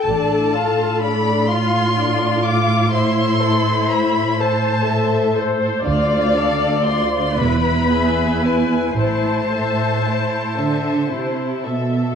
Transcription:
<<
  \new Staff \with { instrumentName = "Violin section" } { \time 6/8 \key a \minor \tempo 4. = 40 a''4 b''8 c'''4 d'''8 | c'''4 b''8 a''4 r8 | f''4 c'''8 b''4 gis''8 | a''2~ a''8 r8 | }
  \new Staff \with { instrumentName = "Violin section" } { \time 6/8 \key a \minor <d' d''>8 <f' f''>8 <d' d''>8 <f' f''>8 <d' d''>8 <f' f''>8 | <c'' e''>8 <a' c''>8 <c'' e''>8 <a' c''>8 <c'' e''>8 <a' c''>8 | <f' c''>8 <a' d''>8 <f' c''>8 <e' b'>8 <gis' e''>8 <e' b'>8 | <e' c''>8 <a' e''>8 <e' c''>8 <a' e''>8 <e' c''>8 <a' e''>8 | }
  \new Staff \with { instrumentName = "Viola section" } { \time 6/8 \key a \minor a'4. f'4. | e'4. c''8 a'8 c''8 | d''4. b'4. | c''2~ c''16 r8. | }
  \new Staff \with { instrumentName = "Cello section" } { \clef bass \time 6/8 \key a \minor a,2.~ | a,2. | d,4. e,4. | a,4. d8 c8 b,8 | }
  \new Staff \with { instrumentName = "Double bass section" } { \clef bass \time 6/8 \key a \minor a,,4 r2 | r2. | d,4 r8 e,,4 r8 | a,,4 r2 | }
>>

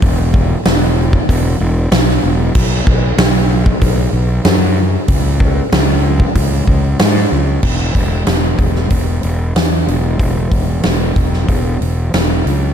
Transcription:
<<
  \new Staff \with { instrumentName = "Fingered electric bass" } { \clef bass \time 4/4 \key cis \minor \tempo 4 = 94 e,,4 e,,4 e,,8 e,,8 b,,8 e,,8 | b,,8 b,,8 b,,4 b,,8 b,,8 fis,4 | cis,4 cis,4 cis,8 cis,8 gis,8 cis,8 | e,,8 e,,8 e,,8 e,,8 e,,8 e,,8 e,8 e,,8 |
e,,8 e,,8 e,,8 e,,8 e,,8 e,,8 e,,8 cis,8 | }
  \new DrumStaff \with { instrumentName = "Drums" } \drummode { \time 4/4 <hho bd>8 bd8 <hho sn>8. bd16 <hho bd>4 <hho sn>16 sn8. | <cymc bd>8 bd8 <hho sn>8. bd16 <hho bd>4 <hho sn>4 | <hho bd>8 bd8 <hho sn>8. bd16 <hho bd>8 bd8 <hho sn>16 sn8. | <cymc bd>8 <hho bd>8 <hho sn>8 <hho bd>16 sn16 <hho bd>8 hho8 <hho sn>8 hho8 |
<hho bd>8 <hho bd>8 <hho sn>8 <hho bd>16 sn16 <hho bd>8 hho8 <hho sn>8 hho8 | }
>>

